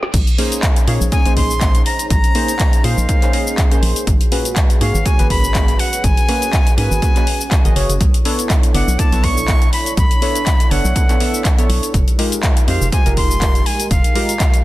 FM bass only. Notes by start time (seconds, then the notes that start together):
0.14 A#1
0.87 A#2
1.01 A#1
1.26 A#1
2.10 A#1
2.84 A#2
2.98 A#1
3.83 A#1
4.07 G#1
4.81 G#2
4.94 G#1
5.19 G#1
6.04 G#1
6.78 G#2
6.91 G#1
7.65 G#1
7.76 F#1
7.89 F#1
8.01 B1
8.74 F#1
8.88 B1
9.12 B1
9.97 B1
10.71 F#1
10.85 B1
11.69 B1
11.94 F1
12.68 F2
12.81 F1
13.06 F1
13.91 F1